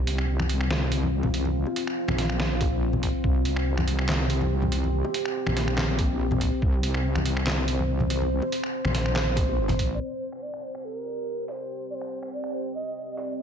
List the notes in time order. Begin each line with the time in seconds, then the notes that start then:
Already playing: C2 C4 F4
0.07 closed hi-hat
0.18 finger snap
0.39 finger snap, high conga
0.49 closed hi-hat
0.61 finger snap
0.71 snare
0.92 closed hi-hat
1.03 high conga
1.23 high conga, low conga
1.34 closed hi-hat, high bongo
1.45 high conga
1.66 high bongo
1.76 closed hi-hat
1.87 finger snap
2.08 A#1, finger snap, high conga
2.18 snare, closed hi-hat
2.30 finger snap
2.40 snare
2.61 kick, closed hi-hat, high bongo
2.93 high bongo, high conga, low conga
3.03 kick, closed hi-hat
3.24 C2 G4, kick
3.45 closed hi-hat
3.56 finger snap
3.77 finger snap, high conga
3.88 closed hi-hat
3.99 finger snap
4.09 snare, clap
4.30 closed hi-hat
4.41 high conga
4.62 high conga, low conga
4.72 closed hi-hat, high bongo
4.84 high conga
5.05 high bongo
5.14 closed hi-hat
5.25 finger snap
5.46 A#1, finger snap, high conga
5.57 snare, closed hi-hat
5.68 finger snap
5.78 snare, clap
5.99 kick, closed hi-hat
6.31 high bongo, high conga, low conga
6.41 kick, closed hi-hat
6.62 C2 C5, kick
6.83 closed hi-hat
6.94 finger snap
7.15 finger snap, high conga
7.25 closed hi-hat
7.37 finger snap
7.47 snare, clap
7.68 closed hi-hat
7.79 high conga
8.00 high conga, low conga
8.10 closed hi-hat, high bongo
8.22 high conga
8.42 high bongo
8.52 closed hi-hat
8.64 finger snap
8.85 A#1, finger snap, high conga
8.95 snare, closed hi-hat
9.06 finger snap
9.16 snare, clap
9.36 kick, closed hi-hat, high bongo
9.49 high bongo
9.58 G1
9.69 closed hi-hat, high bongo, high conga, low conga
9.79 A#1, kick, closed hi-hat
9.94 D5
10.00 C4 G4 C5
10.32 finger snap
10.42 D5
10.54 finger snap
10.64 C5
10.75 finger snap
10.85 A4
10.97 A#4
11.48 C5 D5, open hi-hat
11.90 D5
11.95 C5
12.01 finger snap
12.23 finger snap
12.33 D5
12.44 finger snap
12.54 C5
12.75 D#5
13.17 D5, open hi-hat
13.38 D#5